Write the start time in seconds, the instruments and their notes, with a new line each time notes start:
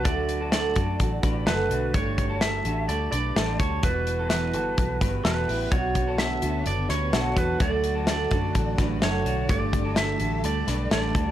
0.04 fingered electric bass D2, steel-string acoustic guitar D3 F#3 A3 D4 F#4, clean electric guitar D4 F#4, lead electric guitar D5, kick, closed hi-hat
0.29 closed hi-hat
0.41 clean electric guitar F#4 A4
0.51 steel-string acoustic guitar D3 F#3 A3 D4 F#4, lead electric guitar D5, snare, closed hi-hat
0.76 fingered electric bass F#2, steel-string acoustic guitar A3 D4 F#4, clean electric guitar F#4 A4, kick, closed hi-hat
0.99 fingered electric bass A1, steel-string acoustic guitar F#3 A3 D4 F#4, kick, closed hi-hat
1.23 fingered electric bass A1, steel-string acoustic guitar A3 D4 F#4, clean electric guitar G4 B4, kick, closed hi-hat
1.47 fingered electric bass F#1, steel-string acoustic guitar D3 F#3 A3 D4 F#4, clean electric guitar F#4 A4, lead electric guitar B4, snare, closed hi-hat
1.70 fingered electric bass B1, clean electric guitar D4 F#4, closed hi-hat
1.94 fingered electric bass G1, steel-string acoustic guitar G3 A3 D4 G4, clean electric guitar D4 G4, lead electric guitar C#5, kick, closed hi-hat
2.18 kick, closed hi-hat
2.30 clean electric guitar F#4 A4
2.41 steel-string acoustic guitar G3 A3 D4 G4, lead electric guitar E5, snare, closed hi-hat
2.64 fingered electric bass A1, steel-string acoustic guitar A3 D4 G4, clean electric guitar F#4 A4, closed hi-hat
2.88 fingered electric bass D2, steel-string acoustic guitar G3 A3 D4 G4, lead electric guitar D5, closed hi-hat
3.12 fingered electric bass B1, steel-string acoustic guitar A3 D4, clean electric guitar G4 B4, lead electric guitar D5, closed hi-hat
3.35 fingered electric bass A1, steel-string acoustic guitar G3 A3 D4 G4, clean electric guitar D4 A4, snare, closed hi-hat
3.60 fingered electric bass D2, clean electric guitar F#4 A4, lead electric guitar C#5, kick, closed hi-hat
3.83 fingered electric bass E1, steel-string acoustic guitar E3 G3 B3 F#4, clean electric guitar B3 F#4, lead electric guitar B4, kick, closed hi-hat
4.07 closed hi-hat
4.19 clean electric guitar F#4 A4
4.30 steel-string acoustic guitar E3 G3 B3 F#4, lead electric guitar B4, snare, closed hi-hat
4.54 fingered electric bass G1, steel-string acoustic guitar G3 B3 F#4, clean electric guitar F#4 A4, closed hi-hat
4.77 fingered electric bass B1, steel-string acoustic guitar E3 G3 B3 F#4, kick, closed hi-hat
5.00 fingered electric bass G1, steel-string acoustic guitar G3 B3 F#4, clean electric guitar G4 B4, kick, closed hi-hat
5.23 fingered electric bass E1, steel-string acoustic guitar E3 G3 B3 F#4, clean electric guitar F#4 A4, lead electric guitar B4, snare, closed hi-hat
5.49 fingered electric bass A1, clean electric guitar E4 G4, open hi-hat
5.71 fingered electric bass B1, steel-string acoustic guitar B2 F#3 B3 D4 F#4 C#5, string machine D3 B3 F#4 C#5, clean electric guitar D4 F#4, lead electric guitar C#5, kick, closed hi-hat
5.95 kick, closed hi-hat
6.08 clean electric guitar F#4 A4
6.18 steel-string acoustic guitar B2 F#3 B3 D4 F#4 C#5, lead electric guitar E5, snare, closed hi-hat
6.42 fingered electric bass D2, steel-string acoustic guitar B3 D4 F#4, clean electric guitar F#4 A4, closed hi-hat
6.65 fingered electric bass F#1, steel-string acoustic guitar B3 D4 F#4 C#5, lead electric guitar D5, closed hi-hat
6.89 fingered electric bass D2, steel-string acoustic guitar B3 D4 F#4 C#5, clean electric guitar G4 B4, lead electric guitar C#5, snare, closed hi-hat
7.12 fingered electric bass B1, steel-string acoustic guitar B2 F#3 B3 D4 F#4 C#5, clean electric guitar F#4 A4, snare, closed hi-hat
7.36 fingered electric bass E2, clean electric guitar F#4 A4, lead electric guitar B4, kick, closed hi-hat
7.60 fingered electric bass D2, string machine D3 F#3 A3, steel-string acoustic guitar D3 F#3 A3 D4 F#4, clean electric guitar D4 F#4, lead electric guitar D5, kick, closed hi-hat
7.84 closed hi-hat
7.95 clean electric guitar F#4 A4
8.07 steel-string acoustic guitar D3 F#3 A3 D4 F#4, lead electric guitar D5, snare, closed hi-hat
8.31 fingered electric bass F#2, steel-string acoustic guitar A3 D4 F#4, clean electric guitar F#4 A4, kick, closed hi-hat
8.55 fingered electric bass A1, steel-string acoustic guitar F#3 A3 D4 F#4, kick, closed hi-hat
8.78 fingered electric bass A1, steel-string acoustic guitar A3 D4 F#4, clean electric guitar G4 B4, kick, snare, closed hi-hat
9.02 fingered electric bass F#1, steel-string acoustic guitar D3 F#3 A3 D4 F#4, clean electric guitar F#4 A4, lead electric guitar C#5, snare, closed hi-hat
9.25 fingered electric bass B1, clean electric guitar D4 F#4, closed hi-hat
9.49 fingered electric bass G1, steel-string acoustic guitar G3 A3 D4 G4, string machine G3 A4, clean electric guitar D4 G4, lead electric guitar D5, kick, closed hi-hat
9.73 kick, closed hi-hat
9.85 clean electric guitar F#4 A4
9.96 steel-string acoustic guitar G3 A3 D4 G4, lead electric guitar E5, snare, closed hi-hat
10.19 fingered electric bass A1, steel-string acoustic guitar A3 D4 G4, clean electric guitar F#4 A4, closed hi-hat
10.43 fingered electric bass D2, steel-string acoustic guitar G3 A3 D4 G4, lead electric guitar D5, closed hi-hat
10.67 fingered electric bass B1, steel-string acoustic guitar A3 D4 G4, clean electric guitar G4 B4, snare, closed hi-hat
10.91 fingered electric bass A1, steel-string acoustic guitar G3 A3 D4 G4, clean electric guitar D4 A4, lead electric guitar D5, snare, closed hi-hat
11.15 fingered electric bass D2, clean electric guitar F#4 A4, kick, closed hi-hat